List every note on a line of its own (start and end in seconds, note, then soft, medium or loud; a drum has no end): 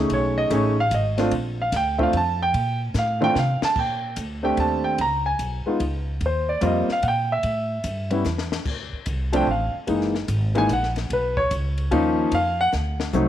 0.00 0.48 A3 medium
0.00 0.48 C#4 medium
0.00 0.48 D#4 medium
0.00 0.48 G#4 medium
0.10 0.50 B1 medium
0.10 0.38 C#5 medium
0.10 kick soft
0.10 ride medium
0.38 0.51 D#5 loud
0.50 0.90 A1 medium
0.50 0.75 A3 medium
0.50 0.75 C#4 medium
0.50 0.75 D#4 medium
0.50 0.75 G#4 medium
0.50 kick soft
0.50 hi-hat pedal medium
0.50 ride medium
0.55 0.79 C#5 medium
0.80 0.92 F5 loud
0.91 1.31 G#1 medium
0.91 1.31 D#5 medium
0.91 kick soft
0.91 hi-hat pedal medium
0.91 ride medium
1.18 1.30 A3 medium
1.18 1.31 C4 medium
1.18 1.31 D4 medium
1.18 1.31 F4 medium
1.18 snare soft
1.18 ride soft
1.31 1.71 A#1 medium
1.31 kick soft
1.31 ride medium
1.62 1.74 F5 medium
1.72 2.12 D2 medium
1.72 kick soft
1.72 snare soft
1.72 hi-hat pedal medium
1.72 ride medium
1.76 2.01 G5 medium
1.98 2.12 A3 medium
1.98 2.12 C4 medium
1.98 2.12 D4 medium
1.98 2.12 F4 medium
1.98 2.00 E5 medium
1.98 kick medium
2.03 2.15 F5 medium
2.13 2.53 F2 medium
2.13 2.41 A5 medium
2.13 kick soft
2.13 ride medium
2.43 2.80 G5 loud
2.54 2.94 A#2 medium
2.54 kick soft
2.54 ride medium
2.94 3.34 A2 medium
2.94 snare medium
2.94 hi-hat pedal medium
2.99 3.23 F5 medium
3.21 3.34 A3 medium
3.21 3.34 C4 medium
3.21 3.34 D4 medium
3.21 3.34 F4 medium
3.21 3.36 G5 loud
3.21 mid tom medium
3.35 3.61 C3 medium
3.35 3.64 F5 medium
3.35 snare medium
3.62 3.77 A5 loud
3.62 muted upright bass stroke soft
3.62 snare medium
3.76 4.16 A#2 medium
3.76 4.16 G5 medium
3.76 kick medium
3.76 crash medium
4.16 4.57 D2 medium
4.16 kick soft
4.16 hi-hat pedal medium
4.16 ride medium
4.43 4.95 A3 medium
4.43 4.96 C4 medium
4.43 4.96 D4 medium
4.43 4.96 G4 medium
4.43 4.58 G5 medium
4.57 4.97 D#2 medium
4.57 4.85 A5 medium
4.57 kick soft
4.57 ride medium
4.84 4.98 G5 medium
4.98 5.38 C#2 medium
4.98 5.26 A#5 loud
4.98 kick soft
4.98 ride medium
5.26 5.64 G#5 medium
5.39 5.64 B1 medium
5.39 kick soft
5.39 hi-hat pedal medium
5.39 ride medium
5.66 5.79 G#3 medium
5.66 5.79 B3 medium
5.66 5.79 D#4 medium
5.66 5.80 F4 medium
5.66 muted upright bass stroke soft
5.80 6.20 C#2 medium
5.80 kick soft
5.80 ride medium
6.21 6.61 D#2 medium
6.21 kick soft
6.21 ride medium
6.26 6.50 C5 medium
6.49 6.62 D5 medium
6.61 6.87 F2 medium
6.61 6.86 G3 medium
6.61 6.86 A#3 medium
6.61 6.86 C4 medium
6.61 6.87 F4 medium
6.61 kick soft
6.61 hi-hat pedal medium
6.61 ride medium
6.66 6.90 D#5 medium
6.89 7.04 F5 medium
6.89 muted upright bass stroke soft
6.89 snare soft
7.03 7.42 A#2 medium
7.03 7.05 F#5 medium
7.03 kick soft
7.03 ride medium
7.08 7.32 G5 medium
7.32 8.22 E5 medium
7.43 7.83 A2 medium
7.43 kick soft
7.43 ride medium
7.84 8.24 G2 medium
7.84 kick soft
7.84 hi-hat pedal medium
7.84 ride medium
8.11 8.23 G3 medium
8.11 8.24 B3 medium
8.11 8.24 C#4 medium
8.11 8.24 E4 medium
8.11 ride soft
8.24 8.65 E2 medium
8.24 snare medium
8.24 hi-hat pedal medium
8.38 snare medium
8.52 snare medium
8.65 8.91 D2 medium
8.65 kick medium
8.65 crash medium
8.93 muted upright bass stroke soft
9.06 9.46 C2 medium
9.06 kick soft
9.06 hi-hat pedal medium
9.06 ride medium
9.33 9.46 F3 medium
9.33 9.46 A3 medium
9.33 9.46 C4 medium
9.33 9.46 D4 medium
9.33 9.48 G5 medium
9.33 ride medium
9.47 9.72 A1 medium
9.47 9.75 F5 medium
9.47 kick soft
9.75 muted upright bass stroke soft
9.87 10.27 F#1 medium
9.87 10.12 E3 medium
9.87 10.12 G#3 medium
9.87 10.12 A#3 medium
9.87 10.12 D#4 medium
9.87 kick soft
9.87 ride medium
10.01 snare soft
10.15 snare soft
10.28 10.68 G#1 medium
10.28 kick soft
10.28 hi-hat pedal medium
10.28 ride medium
10.55 10.68 E3 medium
10.55 10.68 G#3 medium
10.55 10.68 A#3 medium
10.55 10.69 D#4 medium
10.55 10.70 G#5 loud
10.55 ride soft
10.69 11.09 A#1 medium
10.69 10.88 F#5 medium
10.69 kick soft
10.69 hi-hat pedal medium
10.69 ride medium
10.83 snare soft
10.96 snare soft
10.96 ride soft
11.10 11.50 B1 medium
11.10 11.38 B4 medium
11.10 kick soft
11.10 ride medium
11.37 11.51 C#5 medium
11.37 kick medium
11.51 11.91 C#2 medium
11.51 kick soft
11.51 hi-hat pedal medium
11.51 ride medium
11.78 ride soft
11.91 12.31 D#2 medium
11.91 12.32 F3 medium
11.91 12.32 A#3 medium
11.91 12.33 C#4 medium
11.91 12.33 D#4 medium
11.91 kick soft
11.91 ride medium
12.32 12.72 F2 medium
12.32 12.60 F5 loud
12.32 kick soft
12.32 ride medium
12.61 12.69 F#5 loud
12.72 13.13 D2 medium
12.72 snare medium
12.72 hi-hat pedal medium
13.00 snare medium
13.13 13.29 C2 medium
13.13 13.29 F#3 medium
13.13 13.29 A3 medium
13.13 13.29 C4 medium
13.13 13.29 D#4 medium
13.13 hi-hat pedal medium
13.13 high tom medium